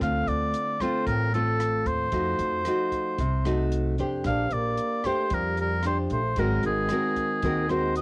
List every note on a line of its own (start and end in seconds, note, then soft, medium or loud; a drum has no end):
0.00 0.26 D2 medium
0.00 1.05 D3 medium
0.00 0.77 A3 medium
0.00 0.77 C4 medium
0.00 0.77 F4 medium
0.00 0.30 F5 loud
0.00 kick medium
0.00 cross-stick medium
0.00 closed hi-hat soft
0.27 0.52 D2 medium
0.27 0.83 D5 medium
0.27 closed hi-hat soft
0.54 closed hi-hat soft
0.80 1.29 A3 medium
0.80 1.30 C4 medium
0.80 1.30 F4 medium
0.80 1.06 C5 medium
0.80 kick soft
0.80 cross-stick medium
0.80 closed hi-hat soft
1.07 1.82 A1 medium
1.07 2.10 A2 medium
1.07 1.32 A#4 medium
1.07 kick medium
1.07 closed hi-hat soft
1.34 2.11 A3 medium
1.34 2.11 C4 medium
1.34 2.12 F4 medium
1.34 1.88 A4 medium
1.34 closed hi-hat soft
1.60 cross-stick medium
1.60 closed hi-hat soft
1.85 2.11 D#2 medium
1.85 3.72 C5 medium
1.85 kick soft
1.85 closed hi-hat soft
2.12 2.37 F2 medium
2.12 3.16 F3 medium
2.12 2.61 A3 medium
2.12 2.61 D#4 medium
2.12 2.62 F#4 medium
2.12 kick medium
2.12 closed hi-hat soft
2.39 2.64 F2 medium
2.39 closed hi-hat soft
2.65 3.19 A3 soft
2.65 3.19 D#4 soft
2.65 3.19 F#4 medium
2.65 cross-stick medium
2.65 closed hi-hat soft
2.92 kick soft
2.92 closed hi-hat soft
3.18 3.94 C2 medium
3.18 4.22 C3 medium
3.18 kick medium
3.18 closed hi-hat soft
3.45 3.94 A3 medium
3.45 3.94 D#4 medium
3.45 3.95 F#4 medium
3.45 cross-stick medium
3.45 closed hi-hat soft
3.72 closed hi-hat soft
3.98 4.23 F2 medium
3.98 5.00 D4 medium
3.98 5.01 G4 medium
3.98 5.01 C5 medium
3.98 kick soft
3.98 closed hi-hat soft
4.24 4.49 A#1 medium
4.24 5.29 A#3 medium
4.24 4.54 D4 medium
4.24 4.54 F5 loud
4.24 kick medium
4.24 cross-stick medium
4.24 closed hi-hat soft
4.50 4.76 A#1 medium
4.50 5.07 A#3 medium
4.50 5.07 D5 medium
4.50 closed hi-hat soft
4.77 closed hi-hat soft
5.04 5.33 A3 medium
5.04 5.80 D4 medium
5.04 5.80 G4 medium
5.04 5.35 C5 medium
5.04 5.80 C5 medium
5.04 kick soft
5.04 cross-stick medium
5.04 closed hi-hat soft
5.30 6.06 F2 medium
5.30 6.35 F3 medium
5.30 5.58 G3 medium
5.30 5.59 A#4 medium
5.30 kick medium
5.30 closed hi-hat soft
5.57 5.83 G3 medium
5.57 5.84 A#4 medium
5.57 closed hi-hat soft
5.83 5.97 G3 medium
5.83 6.20 D4 medium
5.83 6.20 G4 medium
5.83 6.21 C5 medium
5.83 5.98 C5 medium
5.83 cross-stick medium
5.83 closed hi-hat soft
6.10 6.35 A#1 medium
6.10 6.40 A3 medium
6.10 6.41 C5 medium
6.10 kick soft
6.10 closed hi-hat soft
6.36 6.62 G#1 medium
6.36 6.64 F#3 medium
6.36 7.41 G#3 medium
6.36 6.86 C4 medium
6.36 6.86 F#4 medium
6.36 6.86 A#4 medium
6.36 6.65 A#4 medium
6.36 kick medium
6.36 closed hi-hat soft
6.63 6.88 G#1 medium
6.63 7.66 D#3 medium
6.63 7.67 G#4 medium
6.63 closed hi-hat soft
6.89 7.39 C4 soft
6.89 7.40 F#4 soft
6.89 7.40 A#4 medium
6.89 cross-stick medium
6.89 closed hi-hat soft
7.16 kick soft
7.16 closed hi-hat soft
7.43 8.02 D#2 medium
7.43 8.02 D#3 medium
7.43 7.65 C4 medium
7.43 7.66 F#4 medium
7.43 7.66 A#4 medium
7.43 kick medium
7.43 closed hi-hat soft
7.69 7.94 G#3 medium
7.69 8.02 C4 medium
7.69 8.02 F#4 medium
7.69 8.02 A#4 medium
7.69 7.95 C5 medium
7.69 cross-stick medium
7.69 closed hi-hat soft
7.96 8.02 C4 medium
7.96 8.02 D#5 medium
7.96 closed hi-hat soft